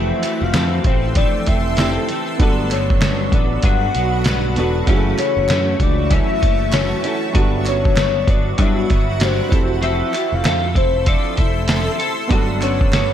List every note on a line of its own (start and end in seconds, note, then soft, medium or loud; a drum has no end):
0.00 0.11 F1 loud
0.00 0.23 F2 medium
0.00 0.23 E3 medium
0.00 1.74 E3 medium
0.00 0.23 A3 medium
0.00 0.22 C4 medium
0.00 1.72 C4 medium
0.00 1.74 G4 medium
0.00 1.75 A4 medium
0.00 2.36 A4 medium
0.00 0.44 E5 loud
0.00 2.37 A5 medium
0.00 2.37 C6 medium
0.00 2.37 E6 medium
0.23 0.54 E3 soft
0.23 0.55 A3 soft
0.23 0.54 C4 medium
0.23 clap medium
0.23 closed hi-hat loud
0.42 0.52 F1 medium
0.42 0.87 F5 loud
0.54 0.79 F2 loud
0.54 0.85 F2 medium
0.54 0.86 E3 medium
0.54 0.86 A3 medium
0.54 0.85 C4 medium
0.54 snare loud
0.54 clap medium
0.54 closed hi-hat medium
0.84 1.24 A1 medium
0.84 1.17 A3 soft
0.84 1.16 C4 medium
0.84 1.16 C5 loud
0.84 kick loud
0.84 closed hi-hat medium
0.89 1.16 E3 soft
1.15 1.47 F2 medium
1.15 1.48 E3 medium
1.15 1.47 A3 medium
1.15 1.46 C4 medium
1.15 1.49 D5 loud
1.15 kick loud
1.15 closed hi-hat medium
1.46 1.97 F1 medium
1.46 1.78 E3 soft
1.46 1.79 A3 medium
1.46 1.78 C4 medium
1.46 2.09 E5 loud
1.46 kick medium
1.46 closed hi-hat medium
1.77 2.09 F2 medium
1.77 2.10 E3 medium
1.77 2.09 A3 medium
1.77 2.39 C4 soft
1.77 2.40 E4 soft
1.77 2.40 G4 soft
1.77 2.41 A4 medium
1.77 snare loud
1.77 clap medium
1.77 closed hi-hat medium
1.81 2.08 C4 medium
2.09 2.41 E3 soft
2.09 2.41 A3 medium
2.09 2.40 C4 soft
2.09 closed hi-hat medium
2.37 3.29 G1 loud
2.37 2.71 G2 medium
2.37 4.51 B3 medium
2.37 4.52 D4 medium
2.37 4.85 F#4 medium
2.37 4.53 F#4 medium
2.37 4.85 F#5 medium
2.37 4.85 B5 medium
2.37 kick loud
2.37 closed hi-hat medium
2.41 2.72 F#3 medium
2.41 2.72 B3 loud
2.41 2.70 D4 loud
2.41 4.54 A4 medium
2.71 3.01 F#3 soft
2.71 3.01 B3 soft
2.71 3.02 D4 medium
2.71 3.35 C#5 medium
2.71 clap medium
2.71 closed hi-hat medium
2.90 kick medium
3.01 3.32 G2 medium
3.01 3.33 F#3 medium
3.01 3.33 B3 medium
3.01 3.32 D4 medium
3.01 snare loud
3.01 clap medium
3.01 closed hi-hat medium
3.32 3.57 A1 medium
3.32 3.63 F#3 soft
3.32 3.64 B3 soft
3.32 3.64 D4 soft
3.32 3.63 D5 medium
3.32 kick loud
3.32 closed hi-hat medium
3.62 3.94 G2 medium
3.62 3.88 G2 loud
3.62 3.95 F#3 medium
3.62 3.95 B3 medium
3.62 3.94 D4 medium
3.62 4.53 F#5 loud
3.62 kick loud
3.62 closed hi-hat medium
3.95 4.58 B1 medium
3.95 4.26 F#3 soft
3.95 4.27 B3 soft
3.95 4.26 D4 soft
3.95 closed hi-hat medium
4.24 4.57 G2 medium
4.24 4.57 F#3 medium
4.24 4.57 B3 medium
4.24 snare loud
4.24 clap medium
4.24 closed hi-hat medium
4.29 4.56 D4 medium
4.56 4.81 E1 medium
4.56 4.87 F#3 medium
4.56 4.87 B3 medium
4.56 4.88 B3 medium
4.56 4.88 D4 medium
4.56 4.88 F#4 medium
4.56 4.88 A4 medium
4.56 closed hi-hat medium
4.86 5.12 F#1 medium
4.86 5.18 F#2 medium
4.86 6.99 C#3 medium
4.86 5.18 E3 medium
4.86 5.19 A3 medium
4.86 5.17 C#4 loud
4.86 7.00 E4 medium
4.86 7.32 F#4 medium
4.86 7.01 F#4 medium
4.86 7.32 E5 medium
4.86 7.33 A5 medium
4.86 7.33 C#6 loud
4.86 kick loud
4.86 closed hi-hat medium
4.91 4.97 G#4 medium
4.98 7.05 A4 medium
5.18 5.48 E3 soft
5.18 5.49 A3 medium
5.18 5.49 C#4 medium
5.18 5.76 C#5 loud
5.18 clap medium
5.18 closed hi-hat medium
5.37 5.47 F#1 loud
5.48 5.80 F#2 medium
5.48 5.74 F#2 loud
5.48 5.80 E3 medium
5.48 5.79 A3 medium
5.48 5.81 C#4 medium
5.48 snare loud
5.48 clap medium
5.48 closed hi-hat medium
5.80 6.20 C#2 medium
5.80 6.10 E3 soft
5.80 6.10 A3 soft
5.80 6.15 D5 loud
5.80 kick loud
5.80 closed hi-hat medium
6.10 6.42 F#2 medium
6.10 6.42 E3 medium
6.10 6.41 A3 medium
6.10 6.39 C#4 medium
6.10 6.73 E5 loud
6.10 kick medium
6.10 closed hi-hat medium
6.40 6.92 F#1 medium
6.40 6.71 E3 soft
6.40 6.72 A3 medium
6.40 6.72 C#4 soft
6.40 kick medium
6.40 closed hi-hat medium
6.72 7.03 F#2 medium
6.72 7.04 E3 medium
6.72 7.02 A3 medium
6.72 7.01 C#4 medium
6.72 7.19 C#5 medium
6.72 snare loud
6.72 clap medium
6.72 closed hi-hat medium
7.02 7.34 E3 soft
7.02 7.34 A3 soft
7.02 7.34 C#4 medium
7.02 7.35 C#4 soft
7.02 7.36 E4 soft
7.02 7.34 F#4 soft
7.02 closed hi-hat medium
7.07 7.35 A4 medium
7.32 8.24 G1 loud
7.32 7.65 G2 medium
7.32 7.66 F#3 medium
7.32 9.46 G3 medium
7.32 7.65 B3 loud
7.32 9.47 D4 medium
7.32 7.64 D4 medium
7.32 9.49 F#4 medium
7.32 9.48 F#4 medium
7.32 9.49 F#5 medium
7.32 9.49 B5 medium
7.32 kick loud
7.32 closed hi-hat medium
7.37 9.49 A4 medium
7.65 7.96 F#3 soft
7.65 7.97 B3 medium
7.65 7.96 D4 medium
7.65 8.31 C#5 loud
7.65 clap medium
7.65 closed hi-hat medium
7.85 kick medium
7.96 8.28 G2 medium
7.96 8.28 F#3 medium
7.96 8.27 B3 medium
7.96 8.26 D4 medium
7.96 snare loud
7.96 clap medium
7.96 closed hi-hat medium
8.27 8.52 G1 medium
8.27 8.57 F#3 soft
8.27 8.58 B3 soft
8.27 8.58 D4 medium
8.27 8.62 D5 medium
8.27 kick loud
8.27 closed hi-hat medium
8.58 8.89 G2 medium
8.58 8.84 G2 loud
8.58 8.89 F#3 medium
8.58 8.90 B3 medium
8.58 8.88 D4 medium
8.58 9.23 E5 loud
8.58 kick loud
8.58 closed hi-hat medium
8.89 9.40 G1 medium
8.89 9.20 F#3 soft
8.89 9.21 B3 soft
8.89 9.20 D4 medium
8.89 kick medium
8.89 closed hi-hat medium
9.20 9.51 G2 medium
9.20 9.52 F#3 medium
9.20 9.51 D4 medium
9.20 9.71 C5 medium
9.20 snare loud
9.20 clap medium
9.20 closed hi-hat medium
9.49 10.01 F1 loud
9.49 11.95 E3 medium
9.49 11.94 C4 medium
9.49 9.81 E4 medium
9.49 11.96 G4 medium
9.49 9.82 A4 medium
9.49 12.28 A4 medium
9.49 12.28 A5 medium
9.49 12.28 C6 medium
9.49 12.28 E6 medium
9.49 kick loud
9.49 closed hi-hat medium
9.53 9.82 C4 soft
9.53 11.97 A4 medium
9.82 10.13 F3 medium
9.82 10.13 C4 medium
9.82 10.13 E4 medium
9.82 10.11 A4 medium
9.82 10.36 E5 loud
9.82 closed hi-hat medium
10.12 10.44 C4 soft
10.12 10.45 E4 medium
10.12 10.44 A4 medium
10.12 clap medium
10.12 closed hi-hat medium
10.32 10.42 F1 medium
10.32 10.77 F5 loud
10.44 10.77 F2 loud
10.44 10.75 F3 medium
10.44 10.75 C4 medium
10.44 10.73 A4 medium
10.44 snare loud
10.44 clap medium
10.44 closed hi-hat medium
10.74 11.15 F1 medium
10.74 11.06 C4 soft
10.74 11.06 E4 soft
10.74 11.06 A4 medium
10.74 11.05 C5 medium
10.74 kick loud
10.74 closed hi-hat medium
11.06 11.37 F3 medium
11.06 11.37 C4 medium
11.06 11.36 E4 medium
11.06 11.35 A4 medium
11.06 11.36 D5 loud
11.06 kick loud
11.06 closed hi-hat medium
11.36 11.87 F1 medium
11.36 11.67 C4 soft
11.36 11.68 E4 medium
11.36 11.68 A4 medium
11.36 11.97 E5 loud
11.36 kick medium
11.36 closed hi-hat medium
11.68 11.99 F3 medium
11.68 11.99 C4 medium
11.68 12.00 E4 medium
11.68 11.98 A4 medium
11.68 snare loud
11.68 clap medium
11.68 closed hi-hat medium
11.99 12.30 C4 soft
11.99 12.31 E4 soft
11.99 12.30 A4 medium
11.99 closed hi-hat medium
12.28 13.13 G1 medium
12.28 13.13 F#3 medium
12.28 12.61 G3 medium
12.28 13.13 B3 medium
12.28 12.62 B3 medium
12.28 13.13 D4 medium
12.28 12.62 D4 medium
12.28 13.13 B4 medium
12.28 13.13 B5 medium
12.28 kick loud
12.28 closed hi-hat medium
12.32 12.61 F#4 loud
12.32 13.13 A4 medium
12.62 12.92 B3 soft
12.62 12.94 D4 soft
12.62 12.93 F#4 medium
12.62 13.13 C#5 medium
12.62 clap medium
12.62 closed hi-hat medium
12.81 kick loud
12.93 13.13 G3 medium
12.93 13.13 B3 medium
12.93 13.13 D4 medium
12.93 13.13 F#4 medium
12.93 snare loud
12.93 clap medium
12.93 closed hi-hat medium